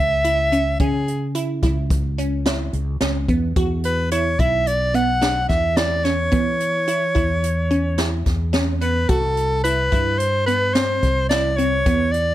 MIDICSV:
0, 0, Header, 1, 5, 480
1, 0, Start_track
1, 0, Tempo, 552995
1, 691, Time_signature, 5, 2, 24, 8
1, 10715, End_track
2, 0, Start_track
2, 0, Title_t, "Soprano saxophone"
2, 0, Program_c, 0, 64
2, 0, Note_on_c, 0, 76, 101
2, 686, Note_off_c, 0, 76, 0
2, 691, Note_on_c, 0, 68, 69
2, 1137, Note_off_c, 0, 68, 0
2, 3345, Note_on_c, 0, 71, 72
2, 3560, Note_off_c, 0, 71, 0
2, 3574, Note_on_c, 0, 73, 77
2, 3817, Note_on_c, 0, 76, 81
2, 3830, Note_off_c, 0, 73, 0
2, 4056, Note_on_c, 0, 74, 81
2, 4069, Note_off_c, 0, 76, 0
2, 4297, Note_on_c, 0, 78, 90
2, 4310, Note_off_c, 0, 74, 0
2, 4759, Note_off_c, 0, 78, 0
2, 4765, Note_on_c, 0, 76, 72
2, 5006, Note_on_c, 0, 74, 78
2, 5019, Note_off_c, 0, 76, 0
2, 5247, Note_on_c, 0, 73, 81
2, 5260, Note_off_c, 0, 74, 0
2, 7169, Note_off_c, 0, 73, 0
2, 7651, Note_on_c, 0, 71, 75
2, 7887, Note_on_c, 0, 69, 85
2, 7900, Note_off_c, 0, 71, 0
2, 8359, Note_off_c, 0, 69, 0
2, 8365, Note_on_c, 0, 71, 82
2, 8839, Note_on_c, 0, 72, 79
2, 8852, Note_off_c, 0, 71, 0
2, 9078, Note_off_c, 0, 72, 0
2, 9083, Note_on_c, 0, 71, 84
2, 9320, Note_on_c, 0, 72, 98
2, 9333, Note_off_c, 0, 71, 0
2, 9797, Note_off_c, 0, 72, 0
2, 9803, Note_on_c, 0, 74, 85
2, 10038, Note_on_c, 0, 73, 89
2, 10051, Note_off_c, 0, 74, 0
2, 10517, Note_on_c, 0, 74, 84
2, 10530, Note_off_c, 0, 73, 0
2, 10715, Note_off_c, 0, 74, 0
2, 10715, End_track
3, 0, Start_track
3, 0, Title_t, "Synth arpeggio sound"
3, 0, Program_c, 1, 84
3, 213, Note_on_c, 1, 64, 75
3, 342, Note_off_c, 1, 64, 0
3, 454, Note_on_c, 1, 61, 70
3, 583, Note_off_c, 1, 61, 0
3, 697, Note_on_c, 1, 61, 81
3, 955, Note_off_c, 1, 61, 0
3, 1171, Note_on_c, 1, 64, 81
3, 1301, Note_off_c, 1, 64, 0
3, 1416, Note_on_c, 1, 64, 69
3, 1675, Note_off_c, 1, 64, 0
3, 1896, Note_on_c, 1, 61, 73
3, 2024, Note_off_c, 1, 61, 0
3, 2132, Note_on_c, 1, 64, 73
3, 2392, Note_off_c, 1, 64, 0
3, 2611, Note_on_c, 1, 61, 74
3, 2741, Note_off_c, 1, 61, 0
3, 2855, Note_on_c, 1, 59, 73
3, 2984, Note_off_c, 1, 59, 0
3, 3093, Note_on_c, 1, 66, 83
3, 3352, Note_off_c, 1, 66, 0
3, 3575, Note_on_c, 1, 64, 78
3, 3703, Note_off_c, 1, 64, 0
3, 3816, Note_on_c, 1, 64, 69
3, 4074, Note_off_c, 1, 64, 0
3, 4291, Note_on_c, 1, 59, 67
3, 4420, Note_off_c, 1, 59, 0
3, 4527, Note_on_c, 1, 62, 73
3, 4788, Note_off_c, 1, 62, 0
3, 5010, Note_on_c, 1, 64, 75
3, 5140, Note_off_c, 1, 64, 0
3, 5251, Note_on_c, 1, 61, 73
3, 5380, Note_off_c, 1, 61, 0
3, 5483, Note_on_c, 1, 59, 86
3, 5745, Note_off_c, 1, 59, 0
3, 5969, Note_on_c, 1, 64, 79
3, 6099, Note_off_c, 1, 64, 0
3, 6206, Note_on_c, 1, 64, 73
3, 6467, Note_off_c, 1, 64, 0
3, 6690, Note_on_c, 1, 61, 68
3, 6820, Note_off_c, 1, 61, 0
3, 6926, Note_on_c, 1, 64, 74
3, 7188, Note_off_c, 1, 64, 0
3, 7404, Note_on_c, 1, 61, 79
3, 7536, Note_off_c, 1, 61, 0
3, 7651, Note_on_c, 1, 59, 72
3, 7781, Note_off_c, 1, 59, 0
3, 7890, Note_on_c, 1, 66, 84
3, 8151, Note_off_c, 1, 66, 0
3, 8372, Note_on_c, 1, 64, 76
3, 8502, Note_off_c, 1, 64, 0
3, 8610, Note_on_c, 1, 64, 69
3, 8871, Note_off_c, 1, 64, 0
3, 9093, Note_on_c, 1, 59, 69
3, 9223, Note_off_c, 1, 59, 0
3, 9337, Note_on_c, 1, 60, 76
3, 9596, Note_off_c, 1, 60, 0
3, 9815, Note_on_c, 1, 64, 81
3, 9945, Note_off_c, 1, 64, 0
3, 10055, Note_on_c, 1, 60, 69
3, 10185, Note_off_c, 1, 60, 0
3, 10297, Note_on_c, 1, 59, 80
3, 10557, Note_off_c, 1, 59, 0
3, 10715, End_track
4, 0, Start_track
4, 0, Title_t, "Fretless electric bass"
4, 0, Program_c, 2, 35
4, 0, Note_on_c, 2, 37, 81
4, 657, Note_off_c, 2, 37, 0
4, 694, Note_on_c, 2, 49, 77
4, 1412, Note_on_c, 2, 37, 68
4, 1425, Note_off_c, 2, 49, 0
4, 2335, Note_off_c, 2, 37, 0
4, 2370, Note_on_c, 2, 37, 70
4, 2593, Note_off_c, 2, 37, 0
4, 2608, Note_on_c, 2, 37, 68
4, 2825, Note_off_c, 2, 37, 0
4, 2849, Note_on_c, 2, 40, 69
4, 3065, Note_off_c, 2, 40, 0
4, 3092, Note_on_c, 2, 40, 77
4, 3776, Note_off_c, 2, 40, 0
4, 3810, Note_on_c, 2, 35, 69
4, 4734, Note_off_c, 2, 35, 0
4, 4768, Note_on_c, 2, 40, 83
4, 5454, Note_off_c, 2, 40, 0
4, 5491, Note_on_c, 2, 52, 75
4, 6212, Note_on_c, 2, 40, 72
4, 6225, Note_off_c, 2, 52, 0
4, 7136, Note_off_c, 2, 40, 0
4, 7171, Note_on_c, 2, 40, 75
4, 7856, Note_off_c, 2, 40, 0
4, 7893, Note_on_c, 2, 36, 80
4, 8578, Note_off_c, 2, 36, 0
4, 8613, Note_on_c, 2, 43, 72
4, 9539, Note_off_c, 2, 43, 0
4, 9571, Note_on_c, 2, 36, 82
4, 10259, Note_off_c, 2, 36, 0
4, 10296, Note_on_c, 2, 40, 80
4, 10715, Note_off_c, 2, 40, 0
4, 10715, End_track
5, 0, Start_track
5, 0, Title_t, "Drums"
5, 213, Note_on_c, 9, 42, 63
5, 300, Note_off_c, 9, 42, 0
5, 455, Note_on_c, 9, 42, 52
5, 542, Note_off_c, 9, 42, 0
5, 691, Note_on_c, 9, 42, 68
5, 694, Note_on_c, 9, 36, 92
5, 778, Note_off_c, 9, 42, 0
5, 780, Note_off_c, 9, 36, 0
5, 936, Note_on_c, 9, 42, 50
5, 1023, Note_off_c, 9, 42, 0
5, 1173, Note_on_c, 9, 42, 75
5, 1260, Note_off_c, 9, 42, 0
5, 1410, Note_on_c, 9, 38, 28
5, 1410, Note_on_c, 9, 42, 56
5, 1412, Note_on_c, 9, 36, 62
5, 1497, Note_off_c, 9, 38, 0
5, 1497, Note_off_c, 9, 42, 0
5, 1499, Note_off_c, 9, 36, 0
5, 1652, Note_on_c, 9, 38, 28
5, 1652, Note_on_c, 9, 42, 72
5, 1653, Note_on_c, 9, 36, 87
5, 1739, Note_off_c, 9, 38, 0
5, 1739, Note_off_c, 9, 42, 0
5, 1740, Note_off_c, 9, 36, 0
5, 1898, Note_on_c, 9, 42, 51
5, 1985, Note_off_c, 9, 42, 0
5, 2135, Note_on_c, 9, 38, 86
5, 2135, Note_on_c, 9, 42, 70
5, 2222, Note_off_c, 9, 38, 0
5, 2222, Note_off_c, 9, 42, 0
5, 2371, Note_on_c, 9, 42, 47
5, 2458, Note_off_c, 9, 42, 0
5, 2609, Note_on_c, 9, 38, 87
5, 2609, Note_on_c, 9, 42, 62
5, 2696, Note_off_c, 9, 38, 0
5, 2696, Note_off_c, 9, 42, 0
5, 2850, Note_on_c, 9, 42, 50
5, 2852, Note_on_c, 9, 36, 67
5, 2937, Note_off_c, 9, 42, 0
5, 2938, Note_off_c, 9, 36, 0
5, 3092, Note_on_c, 9, 36, 89
5, 3092, Note_on_c, 9, 42, 68
5, 3178, Note_off_c, 9, 42, 0
5, 3179, Note_off_c, 9, 36, 0
5, 3329, Note_on_c, 9, 42, 51
5, 3416, Note_off_c, 9, 42, 0
5, 3570, Note_on_c, 9, 42, 63
5, 3656, Note_off_c, 9, 42, 0
5, 3811, Note_on_c, 9, 36, 63
5, 3811, Note_on_c, 9, 42, 49
5, 3898, Note_off_c, 9, 36, 0
5, 3898, Note_off_c, 9, 42, 0
5, 4052, Note_on_c, 9, 42, 67
5, 4138, Note_off_c, 9, 42, 0
5, 4291, Note_on_c, 9, 42, 48
5, 4378, Note_off_c, 9, 42, 0
5, 4531, Note_on_c, 9, 38, 95
5, 4531, Note_on_c, 9, 42, 68
5, 4618, Note_off_c, 9, 38, 0
5, 4618, Note_off_c, 9, 42, 0
5, 4769, Note_on_c, 9, 38, 27
5, 4769, Note_on_c, 9, 42, 49
5, 4771, Note_on_c, 9, 36, 61
5, 4856, Note_off_c, 9, 38, 0
5, 4856, Note_off_c, 9, 42, 0
5, 4857, Note_off_c, 9, 36, 0
5, 5006, Note_on_c, 9, 38, 91
5, 5006, Note_on_c, 9, 42, 67
5, 5093, Note_off_c, 9, 38, 0
5, 5093, Note_off_c, 9, 42, 0
5, 5249, Note_on_c, 9, 38, 28
5, 5249, Note_on_c, 9, 42, 52
5, 5336, Note_off_c, 9, 38, 0
5, 5336, Note_off_c, 9, 42, 0
5, 5488, Note_on_c, 9, 42, 77
5, 5491, Note_on_c, 9, 36, 91
5, 5575, Note_off_c, 9, 42, 0
5, 5578, Note_off_c, 9, 36, 0
5, 5731, Note_on_c, 9, 42, 52
5, 5818, Note_off_c, 9, 42, 0
5, 5973, Note_on_c, 9, 42, 73
5, 6060, Note_off_c, 9, 42, 0
5, 6213, Note_on_c, 9, 36, 62
5, 6213, Note_on_c, 9, 42, 54
5, 6300, Note_off_c, 9, 36, 0
5, 6300, Note_off_c, 9, 42, 0
5, 6455, Note_on_c, 9, 42, 73
5, 6541, Note_off_c, 9, 42, 0
5, 6692, Note_on_c, 9, 42, 48
5, 6779, Note_off_c, 9, 42, 0
5, 6928, Note_on_c, 9, 38, 92
5, 6928, Note_on_c, 9, 42, 70
5, 7015, Note_off_c, 9, 38, 0
5, 7015, Note_off_c, 9, 42, 0
5, 7168, Note_on_c, 9, 38, 29
5, 7168, Note_on_c, 9, 42, 50
5, 7172, Note_on_c, 9, 36, 58
5, 7255, Note_off_c, 9, 38, 0
5, 7255, Note_off_c, 9, 42, 0
5, 7259, Note_off_c, 9, 36, 0
5, 7410, Note_on_c, 9, 38, 87
5, 7410, Note_on_c, 9, 42, 63
5, 7496, Note_off_c, 9, 38, 0
5, 7496, Note_off_c, 9, 42, 0
5, 7650, Note_on_c, 9, 42, 51
5, 7737, Note_off_c, 9, 42, 0
5, 7889, Note_on_c, 9, 42, 68
5, 7893, Note_on_c, 9, 36, 90
5, 7976, Note_off_c, 9, 42, 0
5, 7979, Note_off_c, 9, 36, 0
5, 8132, Note_on_c, 9, 42, 47
5, 8219, Note_off_c, 9, 42, 0
5, 8373, Note_on_c, 9, 42, 69
5, 8460, Note_off_c, 9, 42, 0
5, 8614, Note_on_c, 9, 36, 69
5, 8615, Note_on_c, 9, 42, 50
5, 8701, Note_off_c, 9, 36, 0
5, 8702, Note_off_c, 9, 42, 0
5, 8852, Note_on_c, 9, 42, 69
5, 8939, Note_off_c, 9, 42, 0
5, 9096, Note_on_c, 9, 42, 51
5, 9183, Note_off_c, 9, 42, 0
5, 9333, Note_on_c, 9, 38, 93
5, 9333, Note_on_c, 9, 42, 71
5, 9419, Note_off_c, 9, 38, 0
5, 9419, Note_off_c, 9, 42, 0
5, 9572, Note_on_c, 9, 38, 28
5, 9572, Note_on_c, 9, 42, 52
5, 9573, Note_on_c, 9, 36, 59
5, 9659, Note_off_c, 9, 38, 0
5, 9659, Note_off_c, 9, 42, 0
5, 9660, Note_off_c, 9, 36, 0
5, 9813, Note_on_c, 9, 38, 83
5, 9813, Note_on_c, 9, 42, 72
5, 9900, Note_off_c, 9, 38, 0
5, 9900, Note_off_c, 9, 42, 0
5, 10059, Note_on_c, 9, 42, 57
5, 10145, Note_off_c, 9, 42, 0
5, 10294, Note_on_c, 9, 42, 73
5, 10296, Note_on_c, 9, 36, 89
5, 10381, Note_off_c, 9, 42, 0
5, 10383, Note_off_c, 9, 36, 0
5, 10535, Note_on_c, 9, 42, 55
5, 10622, Note_off_c, 9, 42, 0
5, 10715, End_track
0, 0, End_of_file